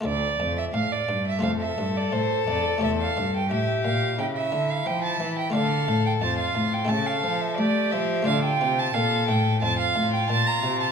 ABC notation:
X:1
M:4/4
L:1/16
Q:1/4=88
K:Dm
V:1 name="Violin"
d3 e f d2 e f e2 d c2 d2 | e f2 g e2 f2 g e2 f g a2 g | f3 g a f2 g a f2 e d2 e2 | f g2 a f2 g2 a f2 g a b2 a |]
V:2 name="Violin"
z8 A8- | A4 G4 E8 | A4 F4 A4 G4 | F4 A4 F8 |]
V:3 name="Harpsichord"
[A,FA]8 [A,FA]8 | [A,G^c]16 | [A,Fd]8 [A,Ee]8 | [A,Fd]16 |]
V:4 name="Harpsichord" clef=bass
D,,2 F,,2 A,,2 G,,2 F,,2 G,,2 A,,2 F,,2 | E,,2 G,,2 A,,2 B,,2 ^C,2 D,2 F,2 E,2 | D,2 A,,2 F,,2 A,,2 ^C,2 F,2 A,2 F,2 | D,2 C,2 B,,2 A,,2 F,,2 A,,2 B,,2 C,2 |]
V:5 name="Cello" clef=bass
D,,2 F,,2 A,,2 G,,2 F,,2 G,,2 A,,2 F,,2 | E,,2 G,,2 A,,2 B,,2 ^C,2 D,2 F,2 E,2 | D,2 A,,2 F,,2 A,,2 ^C,2 F,2 A,2 F,2 | D,2 C,2 B,,2 A,,2 F,,2 A,,2 B,,2 C,2 |]